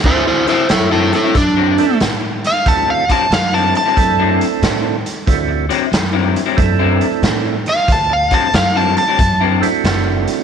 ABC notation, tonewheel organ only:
X:1
M:4/4
L:1/8
Q:"Swing" 1/4=92
K:Dmix
V:1 name="Tonewheel organ"
[A,CDEF] z4 [A,CDEA] z2 | [A,CDEF] z3 [A,CDEA]3 z | [A,CDEF] z3 [A,CDEA]3 z | z4 z [A,CDEF]3 |]